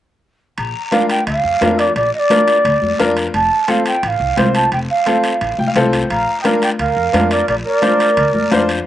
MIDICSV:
0, 0, Header, 1, 6, 480
1, 0, Start_track
1, 0, Key_signature, -2, "major"
1, 0, Tempo, 345224
1, 802, Time_signature, 4, 2, 24, 8
1, 12327, End_track
2, 0, Start_track
2, 0, Title_t, "Bansuri"
2, 0, Program_c, 0, 73
2, 801, Note_on_c, 0, 82, 94
2, 1248, Note_off_c, 0, 82, 0
2, 1278, Note_on_c, 0, 77, 90
2, 1503, Note_off_c, 0, 77, 0
2, 1516, Note_on_c, 0, 79, 90
2, 1742, Note_off_c, 0, 79, 0
2, 1753, Note_on_c, 0, 77, 94
2, 2477, Note_on_c, 0, 74, 82
2, 2498, Note_off_c, 0, 77, 0
2, 2710, Note_off_c, 0, 74, 0
2, 2718, Note_on_c, 0, 74, 76
2, 2943, Note_off_c, 0, 74, 0
2, 2969, Note_on_c, 0, 75, 89
2, 3038, Note_on_c, 0, 74, 97
2, 3052, Note_off_c, 0, 75, 0
2, 4351, Note_off_c, 0, 74, 0
2, 4647, Note_on_c, 0, 81, 89
2, 5127, Note_on_c, 0, 77, 87
2, 5148, Note_off_c, 0, 81, 0
2, 5365, Note_off_c, 0, 77, 0
2, 5372, Note_on_c, 0, 79, 84
2, 5606, Note_off_c, 0, 79, 0
2, 5606, Note_on_c, 0, 79, 83
2, 5662, Note_on_c, 0, 77, 91
2, 5676, Note_off_c, 0, 79, 0
2, 6316, Note_off_c, 0, 77, 0
2, 6325, Note_on_c, 0, 81, 83
2, 6547, Note_off_c, 0, 81, 0
2, 6566, Note_on_c, 0, 79, 77
2, 6649, Note_off_c, 0, 79, 0
2, 6810, Note_on_c, 0, 77, 84
2, 7815, Note_off_c, 0, 77, 0
2, 8483, Note_on_c, 0, 82, 90
2, 8873, Note_off_c, 0, 82, 0
2, 8908, Note_on_c, 0, 79, 61
2, 8965, Note_on_c, 0, 77, 86
2, 8985, Note_off_c, 0, 79, 0
2, 9200, Note_off_c, 0, 77, 0
2, 9208, Note_on_c, 0, 79, 86
2, 9292, Note_off_c, 0, 79, 0
2, 9444, Note_on_c, 0, 77, 93
2, 10163, Note_on_c, 0, 74, 81
2, 10184, Note_off_c, 0, 77, 0
2, 10394, Note_off_c, 0, 74, 0
2, 10402, Note_on_c, 0, 74, 76
2, 10485, Note_off_c, 0, 74, 0
2, 10640, Note_on_c, 0, 74, 91
2, 12024, Note_off_c, 0, 74, 0
2, 12327, End_track
3, 0, Start_track
3, 0, Title_t, "Accordion"
3, 0, Program_c, 1, 21
3, 8482, Note_on_c, 1, 77, 83
3, 8873, Note_off_c, 1, 77, 0
3, 8906, Note_on_c, 1, 75, 52
3, 8960, Note_off_c, 1, 75, 0
3, 8973, Note_on_c, 1, 70, 73
3, 9208, Note_off_c, 1, 70, 0
3, 9213, Note_on_c, 1, 74, 76
3, 9319, Note_off_c, 1, 74, 0
3, 9457, Note_on_c, 1, 70, 75
3, 10119, Note_off_c, 1, 70, 0
3, 10177, Note_on_c, 1, 70, 71
3, 10394, Note_off_c, 1, 70, 0
3, 10415, Note_on_c, 1, 70, 69
3, 10520, Note_off_c, 1, 70, 0
3, 10641, Note_on_c, 1, 70, 81
3, 12024, Note_off_c, 1, 70, 0
3, 12327, End_track
4, 0, Start_track
4, 0, Title_t, "Upright piano"
4, 0, Program_c, 2, 0
4, 1271, Note_on_c, 2, 62, 72
4, 1279, Note_on_c, 2, 65, 64
4, 1286, Note_on_c, 2, 70, 75
4, 1613, Note_off_c, 2, 62, 0
4, 1616, Note_off_c, 2, 65, 0
4, 1620, Note_off_c, 2, 70, 0
4, 2241, Note_on_c, 2, 62, 68
4, 2248, Note_on_c, 2, 65, 65
4, 2251, Note_on_c, 2, 70, 79
4, 2578, Note_off_c, 2, 62, 0
4, 2581, Note_off_c, 2, 65, 0
4, 2583, Note_off_c, 2, 70, 0
4, 3200, Note_on_c, 2, 62, 70
4, 3203, Note_on_c, 2, 65, 67
4, 3212, Note_on_c, 2, 70, 76
4, 3537, Note_off_c, 2, 62, 0
4, 3539, Note_off_c, 2, 65, 0
4, 3543, Note_off_c, 2, 70, 0
4, 4157, Note_on_c, 2, 62, 80
4, 4161, Note_on_c, 2, 65, 75
4, 4168, Note_on_c, 2, 70, 96
4, 4496, Note_off_c, 2, 62, 0
4, 4498, Note_off_c, 2, 65, 0
4, 4502, Note_off_c, 2, 70, 0
4, 5113, Note_on_c, 2, 60, 73
4, 5118, Note_on_c, 2, 65, 66
4, 5123, Note_on_c, 2, 69, 78
4, 5454, Note_off_c, 2, 60, 0
4, 5457, Note_off_c, 2, 65, 0
4, 5459, Note_off_c, 2, 69, 0
4, 6071, Note_on_c, 2, 60, 68
4, 6079, Note_on_c, 2, 65, 67
4, 6084, Note_on_c, 2, 72, 79
4, 6414, Note_off_c, 2, 60, 0
4, 6417, Note_off_c, 2, 65, 0
4, 6420, Note_off_c, 2, 72, 0
4, 7033, Note_on_c, 2, 60, 71
4, 7043, Note_on_c, 2, 65, 65
4, 7046, Note_on_c, 2, 69, 77
4, 7374, Note_off_c, 2, 60, 0
4, 7380, Note_off_c, 2, 65, 0
4, 7381, Note_off_c, 2, 69, 0
4, 7771, Note_on_c, 2, 79, 66
4, 7879, Note_off_c, 2, 79, 0
4, 7892, Note_on_c, 2, 77, 64
4, 7999, Note_off_c, 2, 77, 0
4, 8008, Note_on_c, 2, 60, 80
4, 8013, Note_on_c, 2, 65, 75
4, 8013, Note_on_c, 2, 72, 67
4, 8017, Note_on_c, 2, 69, 91
4, 8342, Note_off_c, 2, 60, 0
4, 8344, Note_off_c, 2, 65, 0
4, 8346, Note_off_c, 2, 69, 0
4, 8455, Note_off_c, 2, 72, 0
4, 8955, Note_on_c, 2, 62, 71
4, 8960, Note_on_c, 2, 65, 64
4, 8965, Note_on_c, 2, 70, 82
4, 9295, Note_off_c, 2, 62, 0
4, 9297, Note_off_c, 2, 65, 0
4, 9300, Note_off_c, 2, 70, 0
4, 9911, Note_on_c, 2, 62, 70
4, 9920, Note_on_c, 2, 65, 67
4, 9926, Note_on_c, 2, 70, 75
4, 10253, Note_off_c, 2, 62, 0
4, 10257, Note_off_c, 2, 65, 0
4, 10260, Note_off_c, 2, 70, 0
4, 10867, Note_on_c, 2, 62, 70
4, 10871, Note_on_c, 2, 65, 65
4, 10879, Note_on_c, 2, 72, 80
4, 11210, Note_off_c, 2, 62, 0
4, 11212, Note_off_c, 2, 65, 0
4, 11216, Note_off_c, 2, 72, 0
4, 11835, Note_on_c, 2, 62, 81
4, 11842, Note_on_c, 2, 65, 77
4, 11846, Note_on_c, 2, 72, 96
4, 12174, Note_off_c, 2, 62, 0
4, 12177, Note_off_c, 2, 65, 0
4, 12179, Note_off_c, 2, 72, 0
4, 12327, End_track
5, 0, Start_track
5, 0, Title_t, "Upright bass"
5, 0, Program_c, 3, 32
5, 807, Note_on_c, 3, 34, 88
5, 997, Note_off_c, 3, 34, 0
5, 1762, Note_on_c, 3, 38, 91
5, 1954, Note_off_c, 3, 38, 0
5, 2003, Note_on_c, 3, 41, 77
5, 2195, Note_off_c, 3, 41, 0
5, 2245, Note_on_c, 3, 41, 87
5, 2628, Note_off_c, 3, 41, 0
5, 2721, Note_on_c, 3, 34, 91
5, 2914, Note_off_c, 3, 34, 0
5, 3681, Note_on_c, 3, 38, 99
5, 3874, Note_off_c, 3, 38, 0
5, 3922, Note_on_c, 3, 41, 83
5, 4115, Note_off_c, 3, 41, 0
5, 4162, Note_on_c, 3, 41, 88
5, 4546, Note_off_c, 3, 41, 0
5, 4645, Note_on_c, 3, 29, 88
5, 4837, Note_off_c, 3, 29, 0
5, 5604, Note_on_c, 3, 33, 93
5, 5796, Note_off_c, 3, 33, 0
5, 5837, Note_on_c, 3, 36, 84
5, 6031, Note_off_c, 3, 36, 0
5, 6080, Note_on_c, 3, 36, 89
5, 6466, Note_off_c, 3, 36, 0
5, 6560, Note_on_c, 3, 29, 90
5, 6754, Note_off_c, 3, 29, 0
5, 7525, Note_on_c, 3, 33, 93
5, 7717, Note_off_c, 3, 33, 0
5, 7768, Note_on_c, 3, 36, 79
5, 7958, Note_off_c, 3, 36, 0
5, 8006, Note_on_c, 3, 36, 88
5, 8389, Note_off_c, 3, 36, 0
5, 8487, Note_on_c, 3, 34, 90
5, 8677, Note_off_c, 3, 34, 0
5, 9443, Note_on_c, 3, 38, 88
5, 9635, Note_off_c, 3, 38, 0
5, 9685, Note_on_c, 3, 41, 77
5, 9876, Note_off_c, 3, 41, 0
5, 9921, Note_on_c, 3, 41, 88
5, 10306, Note_off_c, 3, 41, 0
5, 10402, Note_on_c, 3, 34, 90
5, 10594, Note_off_c, 3, 34, 0
5, 11359, Note_on_c, 3, 38, 101
5, 11552, Note_off_c, 3, 38, 0
5, 11599, Note_on_c, 3, 41, 79
5, 11792, Note_off_c, 3, 41, 0
5, 11844, Note_on_c, 3, 41, 88
5, 12226, Note_off_c, 3, 41, 0
5, 12327, End_track
6, 0, Start_track
6, 0, Title_t, "Drums"
6, 801, Note_on_c, 9, 65, 60
6, 806, Note_on_c, 9, 74, 66
6, 940, Note_off_c, 9, 65, 0
6, 945, Note_off_c, 9, 74, 0
6, 1278, Note_on_c, 9, 63, 80
6, 1284, Note_on_c, 9, 65, 61
6, 1287, Note_on_c, 9, 73, 66
6, 1417, Note_off_c, 9, 63, 0
6, 1423, Note_off_c, 9, 65, 0
6, 1426, Note_off_c, 9, 73, 0
6, 1522, Note_on_c, 9, 65, 66
6, 1529, Note_on_c, 9, 73, 71
6, 1662, Note_off_c, 9, 65, 0
6, 1668, Note_off_c, 9, 73, 0
6, 1764, Note_on_c, 9, 74, 63
6, 1765, Note_on_c, 9, 65, 68
6, 1903, Note_off_c, 9, 74, 0
6, 1904, Note_off_c, 9, 65, 0
6, 2241, Note_on_c, 9, 63, 80
6, 2244, Note_on_c, 9, 73, 63
6, 2250, Note_on_c, 9, 65, 66
6, 2250, Note_on_c, 9, 66, 67
6, 2380, Note_off_c, 9, 63, 0
6, 2383, Note_off_c, 9, 73, 0
6, 2389, Note_off_c, 9, 65, 0
6, 2389, Note_off_c, 9, 66, 0
6, 2485, Note_on_c, 9, 73, 62
6, 2488, Note_on_c, 9, 65, 66
6, 2624, Note_off_c, 9, 73, 0
6, 2627, Note_off_c, 9, 65, 0
6, 2724, Note_on_c, 9, 65, 63
6, 2724, Note_on_c, 9, 74, 69
6, 2863, Note_off_c, 9, 65, 0
6, 2863, Note_off_c, 9, 74, 0
6, 3199, Note_on_c, 9, 63, 84
6, 3206, Note_on_c, 9, 73, 66
6, 3208, Note_on_c, 9, 65, 67
6, 3338, Note_off_c, 9, 63, 0
6, 3345, Note_off_c, 9, 73, 0
6, 3347, Note_off_c, 9, 65, 0
6, 3443, Note_on_c, 9, 65, 63
6, 3443, Note_on_c, 9, 73, 68
6, 3582, Note_off_c, 9, 65, 0
6, 3582, Note_off_c, 9, 73, 0
6, 3687, Note_on_c, 9, 65, 68
6, 3689, Note_on_c, 9, 74, 60
6, 3826, Note_off_c, 9, 65, 0
6, 3828, Note_off_c, 9, 74, 0
6, 3919, Note_on_c, 9, 63, 65
6, 4058, Note_off_c, 9, 63, 0
6, 4159, Note_on_c, 9, 63, 77
6, 4165, Note_on_c, 9, 65, 66
6, 4167, Note_on_c, 9, 73, 62
6, 4298, Note_off_c, 9, 63, 0
6, 4304, Note_off_c, 9, 65, 0
6, 4306, Note_off_c, 9, 73, 0
6, 4402, Note_on_c, 9, 65, 64
6, 4409, Note_on_c, 9, 73, 69
6, 4541, Note_off_c, 9, 65, 0
6, 4548, Note_off_c, 9, 73, 0
6, 4645, Note_on_c, 9, 65, 64
6, 4646, Note_on_c, 9, 74, 66
6, 4784, Note_off_c, 9, 65, 0
6, 4785, Note_off_c, 9, 74, 0
6, 5120, Note_on_c, 9, 65, 64
6, 5123, Note_on_c, 9, 63, 80
6, 5124, Note_on_c, 9, 73, 62
6, 5259, Note_off_c, 9, 65, 0
6, 5262, Note_off_c, 9, 63, 0
6, 5264, Note_off_c, 9, 73, 0
6, 5362, Note_on_c, 9, 65, 64
6, 5366, Note_on_c, 9, 73, 65
6, 5501, Note_off_c, 9, 65, 0
6, 5505, Note_off_c, 9, 73, 0
6, 5605, Note_on_c, 9, 65, 66
6, 5606, Note_on_c, 9, 74, 66
6, 5744, Note_off_c, 9, 65, 0
6, 5745, Note_off_c, 9, 74, 0
6, 6081, Note_on_c, 9, 63, 77
6, 6085, Note_on_c, 9, 73, 62
6, 6086, Note_on_c, 9, 65, 64
6, 6086, Note_on_c, 9, 66, 66
6, 6220, Note_off_c, 9, 63, 0
6, 6224, Note_off_c, 9, 73, 0
6, 6225, Note_off_c, 9, 65, 0
6, 6225, Note_off_c, 9, 66, 0
6, 6321, Note_on_c, 9, 65, 62
6, 6323, Note_on_c, 9, 73, 66
6, 6460, Note_off_c, 9, 65, 0
6, 6462, Note_off_c, 9, 73, 0
6, 6561, Note_on_c, 9, 65, 61
6, 6562, Note_on_c, 9, 74, 70
6, 6700, Note_off_c, 9, 65, 0
6, 6701, Note_off_c, 9, 74, 0
6, 7042, Note_on_c, 9, 65, 67
6, 7045, Note_on_c, 9, 63, 80
6, 7046, Note_on_c, 9, 73, 63
6, 7181, Note_off_c, 9, 65, 0
6, 7184, Note_off_c, 9, 63, 0
6, 7185, Note_off_c, 9, 73, 0
6, 7280, Note_on_c, 9, 65, 63
6, 7284, Note_on_c, 9, 73, 65
6, 7419, Note_off_c, 9, 65, 0
6, 7423, Note_off_c, 9, 73, 0
6, 7525, Note_on_c, 9, 65, 68
6, 7525, Note_on_c, 9, 74, 66
6, 7664, Note_off_c, 9, 65, 0
6, 7664, Note_off_c, 9, 74, 0
6, 7764, Note_on_c, 9, 63, 66
6, 7903, Note_off_c, 9, 63, 0
6, 8001, Note_on_c, 9, 63, 73
6, 8004, Note_on_c, 9, 65, 63
6, 8004, Note_on_c, 9, 66, 66
6, 8007, Note_on_c, 9, 73, 68
6, 8140, Note_off_c, 9, 63, 0
6, 8143, Note_off_c, 9, 65, 0
6, 8143, Note_off_c, 9, 66, 0
6, 8146, Note_off_c, 9, 73, 0
6, 8246, Note_on_c, 9, 73, 65
6, 8248, Note_on_c, 9, 65, 68
6, 8385, Note_off_c, 9, 73, 0
6, 8387, Note_off_c, 9, 65, 0
6, 8484, Note_on_c, 9, 74, 70
6, 8488, Note_on_c, 9, 65, 64
6, 8623, Note_off_c, 9, 74, 0
6, 8627, Note_off_c, 9, 65, 0
6, 8965, Note_on_c, 9, 73, 64
6, 8966, Note_on_c, 9, 63, 78
6, 8967, Note_on_c, 9, 65, 69
6, 9104, Note_off_c, 9, 73, 0
6, 9105, Note_off_c, 9, 63, 0
6, 9106, Note_off_c, 9, 65, 0
6, 9203, Note_on_c, 9, 73, 65
6, 9214, Note_on_c, 9, 65, 64
6, 9342, Note_off_c, 9, 73, 0
6, 9353, Note_off_c, 9, 65, 0
6, 9442, Note_on_c, 9, 74, 65
6, 9446, Note_on_c, 9, 65, 63
6, 9581, Note_off_c, 9, 74, 0
6, 9585, Note_off_c, 9, 65, 0
6, 9917, Note_on_c, 9, 63, 77
6, 9922, Note_on_c, 9, 73, 62
6, 9931, Note_on_c, 9, 65, 68
6, 9931, Note_on_c, 9, 66, 70
6, 10056, Note_off_c, 9, 63, 0
6, 10061, Note_off_c, 9, 73, 0
6, 10070, Note_off_c, 9, 65, 0
6, 10070, Note_off_c, 9, 66, 0
6, 10160, Note_on_c, 9, 73, 66
6, 10163, Note_on_c, 9, 65, 66
6, 10299, Note_off_c, 9, 73, 0
6, 10302, Note_off_c, 9, 65, 0
6, 10404, Note_on_c, 9, 65, 65
6, 10404, Note_on_c, 9, 74, 71
6, 10543, Note_off_c, 9, 65, 0
6, 10543, Note_off_c, 9, 74, 0
6, 10878, Note_on_c, 9, 63, 79
6, 10881, Note_on_c, 9, 65, 65
6, 10888, Note_on_c, 9, 73, 65
6, 11017, Note_off_c, 9, 63, 0
6, 11020, Note_off_c, 9, 65, 0
6, 11027, Note_off_c, 9, 73, 0
6, 11126, Note_on_c, 9, 65, 63
6, 11127, Note_on_c, 9, 73, 72
6, 11265, Note_off_c, 9, 65, 0
6, 11266, Note_off_c, 9, 73, 0
6, 11361, Note_on_c, 9, 65, 70
6, 11363, Note_on_c, 9, 74, 69
6, 11500, Note_off_c, 9, 65, 0
6, 11503, Note_off_c, 9, 74, 0
6, 11597, Note_on_c, 9, 63, 69
6, 11736, Note_off_c, 9, 63, 0
6, 11838, Note_on_c, 9, 63, 77
6, 11840, Note_on_c, 9, 65, 63
6, 11840, Note_on_c, 9, 66, 68
6, 11848, Note_on_c, 9, 73, 65
6, 11977, Note_off_c, 9, 63, 0
6, 11979, Note_off_c, 9, 65, 0
6, 11979, Note_off_c, 9, 66, 0
6, 11987, Note_off_c, 9, 73, 0
6, 12081, Note_on_c, 9, 65, 63
6, 12084, Note_on_c, 9, 73, 68
6, 12220, Note_off_c, 9, 65, 0
6, 12223, Note_off_c, 9, 73, 0
6, 12327, End_track
0, 0, End_of_file